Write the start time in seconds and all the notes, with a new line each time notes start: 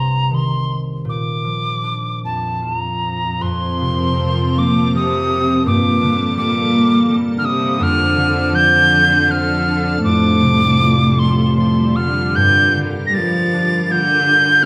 Already playing: C2 C3 A3 A#5
0.31 D#3 C6
1.05 A#2
1.09 D6
1.44 F3
1.83 D4
2.24 F2 A5
2.62 E2 F4 A5
2.74 F2 A#5
3.41 F2 F3 C4 A#4 C6
3.81 C3
4.19 F3
4.57 A#2 A#3 D6
4.95 C3 F3 D#6
5.66 G2 A#2 G3 A#3 A4 D6
6.02 D3
6.37 A#2 G3 D6
6.76 A#3
7.10 G3
7.37 D3 F6
7.44 C3 D#6
7.79 F2 D3 F3 D4 A4
7.83 F6
8.16 D3
8.52 D3 F3 G6
8.90 A3
9.28 D3 F3 F6
10.02 F2 A2 G3 F4 D6
10.41 C3
10.79 F3
11.18 A2 A3 C6
11.57 A2 F3 C6
11.96 D3 F6
12.35 G2 D3 A#4 G6
12.76 D3
13.06 G3 A#6
13.14 F3 A#3 A6
13.54 D4
13.83 F3 A6
13.90 D3 A#3 G6